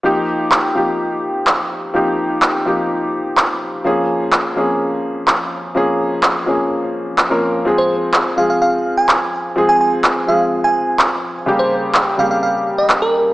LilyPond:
<<
  \new Staff \with { instrumentName = "FM electric piano" } { \time 4/4 \key ees \mixolydian \tempo 4 = 126 r1 | r1 | r1 | r1 |
r16 c''16 r4 f''16 f''16 f''8. aes''4 r16 | r16 aes''16 aes''16 r8. f''16 r8 aes''8. r4 | r16 c''16 r4 f''16 f''16 f''8. ees''16 r16 bes'8. | }
  \new Staff \with { instrumentName = "Grand piano" } { \time 4/4 \key ees \mixolydian <f bes ees' g'>4. <f bes ees' g'>2~ <f bes ees' g'>8 | <f bes ees' g'>4. <f bes ees' g'>2~ <f bes ees' g'>8 | <f bes des' aes'>4. <f bes des' aes'>2~ <f bes des' aes'>8 | <f bes des' aes'>4. <f bes des' aes'>4.~ <f bes des' aes'>16 <f bes des' bes'>8. |
<f aes c' aes'>4. <f aes c' aes'>2~ <f aes c' aes'>8 | <f aes c' aes'>4. <f aes c' aes'>2~ <f aes c' aes'>8 | <des g bes g'>4. <des g bes g'>2~ <des g bes g'>8 | }
  \new DrumStaff \with { instrumentName = "Drums" } \drummode { \time 4/4 r4 hc4 r4 hc4 | r4 hc4 r4 hc4 | r4 hc4 r4 hc4 | r4 hc4 r4 hc4 |
r4 hc4 r4 hc4 | r4 hc4 r4 hc4 | r4 hc4 r4 hc4 | }
>>